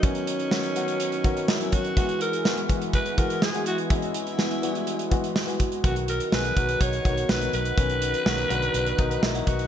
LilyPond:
<<
  \new Staff \with { instrumentName = "Alto saxophone" } { \time 4/4 \key b \major \tempo 4 = 124 cis'2. e'8 fis'8 | fis'8 ais'4 r8 b'8 ais'8 gis'8 fis'8 | e'2.~ e'8 r8 | fis'8 ais'8 b'4 cis''4 b'8 b'8~ |
b'2. e'8 fis'8 | }
  \new Staff \with { instrumentName = "Analog synth pad" } { \time 4/4 \key b \major <fis cis' dis'>1 | <e b e' fis' gis'>1~ | <e b e' fis' gis'>1 | <b dis'>1~ |
<b dis'>1 | }
  \new Staff \with { instrumentName = "Grand piano" } { \clef bass \time 4/4 \key b \major <dis fis b cis'>8. r16 <dis fis b fis'>16 r16 <dis fis b fis'>8. r16 <dis fis b fis'>8 r16 <dis fis b cis'>8 r16 | <e gis b fis'>8. r16 <e gis b fis'>16 r16 <e gis b fis'>8. r16 <e gis b fis'>8 r16 <e gis b fis'>8 r16 | <e gis b cis' dis''>8. r16 <e gis b fis'>16 r16 <e g gis b fis'>8. r16 <e gis b fis'>8 r16 <e gis b fis'>8 r16 | <dis fis b fis'>8. r16 <dis fis b gis'>16 r16 <dis fis b fis'>8. r16 <dis fis b fis'>8 r16 <dis fis b fis'>8 r16 |
<dis fis b cis'>8. r16 <dis fis b fis'>16 r16 <d dis fis b fis'>8. r16 <dis fis b dis'>8 r16 <dis fis b fis'>8 r16 | }
  \new Staff \with { instrumentName = "Fingered electric bass" } { \clef bass \time 4/4 \key b \major r1 | r1 | r1 | b,,4 b,,8 b,,8 b,,8 b,,8 b,,8 b,,8 |
b,,4 b,,8 b,,8 b,,8 b,,8 b,,8 b,,8 | }
  \new DrumStaff \with { instrumentName = "Drums" } \drummode { \time 4/4 <hh bd>16 hh16 hh16 hh16 sn16 hh16 hh16 hh16 hh16 hh16 <hh bd>16 hh16 sn16 hh16 <hh bd>16 hh16 | <hh bd>16 hh16 hh16 hh16 sn16 hh16 <hh bd>16 hh16 <hh bd>16 hh16 <hh bd>16 hh16 sn16 hh16 hh16 hh16 | <hh bd>16 hh16 hh16 hh16 sn16 hh16 hh16 hh16 hh16 hh16 <hh bd>16 hh16 sn16 hh16 <hh bd>16 hh16 | <hh bd>16 hh16 hh16 hh16 sn16 hh16 <hh bd>16 hh16 <hh bd>16 hh16 <hh bd>16 hh16 sn16 hh16 hh16 hh16 |
<hh bd>16 hh16 hh16 hh16 sn16 hh16 hh16 hh16 hh16 hh16 <hh bd>16 hh16 sn16 hh16 <hh bd>16 hh16 | }
>>